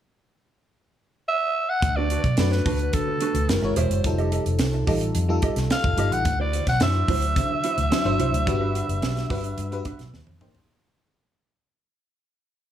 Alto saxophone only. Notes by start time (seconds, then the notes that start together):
1.29 E5
1.70 F#5
1.96 D5
2.39 D5
2.52 B4
2.94 A4
3.49 A#4
3.77 C5
5.72 F5
6.13 F#5
6.41 D5
6.69 F#5
6.83 E5